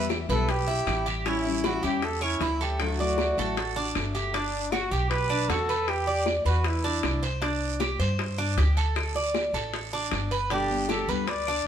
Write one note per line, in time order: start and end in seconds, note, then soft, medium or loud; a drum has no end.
0.00 0.23 E2 medium
0.00 0.28 E5 medium
0.09 0.28 E3 soft
0.09 0.28 G3 soft
0.09 0.28 B3 medium
0.09 0.28 E4 medium
0.09 high bongo medium
0.09 short guiro medium
0.09 claves medium
0.28 0.83 B1 medium
0.28 0.48 E3 medium
0.28 0.48 G3 medium
0.28 0.48 B3 medium
0.28 0.48 E4 medium
0.28 0.52 A4 medium
0.28 0.67 B4 medium
0.28 high bongo soft
0.28 short guiro medium
0.49 1.07 G4 medium
0.49 muted steel-string acoustic guitar stroke medium
0.49 high bongo medium
0.49 long guiro medium
0.68 1.05 E4 medium
0.68 high bongo soft
0.87 1.77 A1 medium
0.87 1.24 E3 soft
0.87 1.25 G3 soft
0.87 1.25 B3 soft
0.87 1.25 E4 medium
0.87 high bongo medium
0.87 low bongo medium
0.87 short guiro medium
0.87 claves medium
1.06 1.25 G4 medium
1.06 short guiro medium
1.25 1.44 E3 medium
1.25 1.44 G3 medium
1.25 1.63 C#4 medium
1.25 1.44 C#4 medium
1.25 1.43 E4 medium
1.25 1.62 E4 medium
1.25 high bongo medium
1.25 long guiro medium
1.44 1.63 G3 soft
1.44 1.64 C#4 medium
1.44 1.63 E4 medium
1.64 1.82 E3 soft
1.64 1.83 G3 medium
1.64 1.83 C#4 medium
1.64 1.83 E4 medium
1.64 1.82 E4 medium
1.64 1.83 F#4 medium
1.64 high bongo medium
1.64 short guiro medium
1.64 claves medium
1.83 2.37 E2 medium
1.83 2.03 G3 medium
1.83 2.02 C#4 medium
1.83 2.02 E4 medium
1.83 2.20 G4 medium
1.83 2.06 G4 medium
1.83 short guiro medium
2.02 2.25 A4 medium
2.02 muted steel-string acoustic guitar stroke soft
2.02 high bongo medium
2.02 long guiro medium
2.21 2.40 C#4 medium
2.21 2.64 E4 medium
2.21 claves medium
2.40 3.31 D2 medium
2.40 2.79 E3 soft
2.40 2.79 G3 soft
2.40 2.80 C#4 soft
2.40 2.60 E4 medium
2.40 2.80 E4 soft
2.40 high bongo medium
2.40 low bongo medium
2.40 short guiro medium
2.61 2.81 G4 medium
2.61 2.98 A4 medium
2.61 short guiro medium
2.80 2.98 D3 medium
2.80 2.98 F#3 medium
2.80 2.99 A3 medium
2.80 2.99 E4 medium
2.80 2.98 F#4 medium
2.80 3.93 F#4 medium
2.80 high bongo medium
2.80 long guiro medium
2.80 claves medium
2.98 3.17 F#3 soft
2.98 3.18 A3 medium
2.98 3.18 E4 medium
2.98 3.18 F#4 medium
2.98 3.37 D5 medium
2.98 high bongo soft
3.18 3.37 F#3 soft
3.18 3.37 A3 medium
3.18 3.37 E4 soft
3.18 3.36 F#4 medium
3.18 high bongo medium
3.18 short guiro medium
3.18 claves medium
3.37 3.91 A1 medium
3.37 3.56 F#3 medium
3.37 3.56 A3 medium
3.37 3.56 E4 medium
3.37 3.56 F#4 medium
3.37 3.76 A4 medium
3.37 high bongo soft
3.37 short guiro medium
3.57 muted steel-string acoustic guitar stroke medium
3.57 high bongo medium
3.57 long guiro medium
3.76 4.13 D4 medium
3.76 high bongo soft
3.95 4.86 G1 medium
3.95 4.33 F#3 soft
3.95 4.34 A3 soft
3.95 4.34 E4 medium
3.95 4.34 F#4 soft
3.95 high bongo medium
3.95 low bongo medium
3.95 short guiro medium
3.95 claves medium
4.15 4.33 G4 medium
4.15 short guiro medium
4.34 4.71 D4 medium
4.34 4.73 D4 medium
4.34 high bongo medium
4.34 long guiro medium
4.72 4.93 F#4 medium
4.72 4.91 F#4 medium
4.72 high bongo medium
4.72 short guiro medium
4.72 claves medium
4.91 5.45 B1 medium
4.91 5.29 G4 medium
4.91 5.10 G4 medium
4.91 short guiro medium
5.10 5.50 B4 medium
5.10 high bongo medium
5.10 long guiro medium
5.30 5.49 D4 medium
5.30 claves medium
5.49 6.39 E2 medium
5.49 5.68 F#4 medium
5.49 5.91 A4 medium
5.49 high bongo medium
5.49 low bongo medium
5.49 short guiro medium
5.69 6.06 B4 medium
5.69 short guiro medium
5.88 6.27 G4 loud
5.88 high bongo medium
5.88 long guiro medium
5.88 claves medium
6.07 6.44 D5 medium
6.07 high bongo soft
6.26 high bongo medium
6.26 short guiro medium
6.26 claves medium
6.45 6.99 E2 medium
6.45 6.68 F#4 medium
6.45 6.83 B4 medium
6.45 high bongo soft
6.45 short guiro medium
6.64 7.24 E4 medium
6.64 high bongo medium
6.64 long guiro medium
6.84 7.21 D4 medium
6.84 high bongo soft
7.03 7.94 C2 medium
7.03 high bongo medium
7.03 low bongo medium
7.03 short guiro medium
7.03 claves medium
7.23 7.41 C5 medium
7.23 short guiro medium
7.42 7.79 D4 medium
7.42 high bongo medium
7.42 long guiro medium
7.80 7.99 G4 medium
7.80 high bongo medium
7.80 short guiro medium
7.80 claves medium
7.99 8.53 G2 medium
7.99 8.37 C5 medium
7.99 short guiro medium
8.19 high bongo medium
8.19 long guiro medium
8.38 8.57 D4 medium
8.38 claves medium
8.57 9.48 D2 medium
8.57 8.76 G4 medium
8.57 high bongo medium
8.57 low bongo medium
8.57 short guiro medium
8.77 9.14 A4 medium
8.77 short guiro medium
8.96 high bongo medium
8.96 long guiro medium
8.96 claves medium
9.15 9.53 D5 medium
9.15 high bongo soft
9.34 high bongo medium
9.34 short guiro medium
9.34 claves medium
9.53 10.07 A1 medium
9.53 9.91 A4 medium
9.53 high bongo soft
9.53 short guiro medium
9.74 high bongo medium
9.74 long guiro medium
9.93 10.30 D4 medium
9.93 high bongo soft
10.11 11.02 G1 medium
10.11 high bongo medium
10.11 low bongo medium
10.11 short guiro medium
10.11 claves medium
10.31 10.50 B4 medium
10.31 short guiro medium
10.50 10.69 B2 medium
10.50 10.69 D3 medium
10.50 10.69 G3 medium
10.50 10.69 B3 medium
10.50 10.88 D4 medium
10.50 10.92 G4 loud
10.50 10.69 G4 medium
10.50 high bongo medium
10.50 long guiro medium
10.70 10.88 D3 medium
10.70 10.89 G3 medium
10.70 10.89 B3 medium
10.70 10.88 G4 medium
10.89 11.08 D3 soft
10.89 11.08 G3 soft
10.89 11.08 B3 soft
10.89 11.08 G4 medium
10.89 11.07 G4 medium
10.89 11.11 A4 medium
10.89 high bongo medium
10.89 short guiro medium
10.89 claves medium
11.08 11.62 D2 medium
11.08 11.26 D3 medium
11.08 11.27 G3 medium
11.08 11.27 B3 medium
11.08 11.27 G4 medium
11.08 11.46 B4 medium
11.08 11.30 B4 medium
11.08 short guiro medium
11.27 11.67 D5 medium
11.27 muted steel-string acoustic guitar stroke medium
11.27 high bongo medium
11.27 long guiro medium
11.47 11.66 D4 medium
11.47 claves medium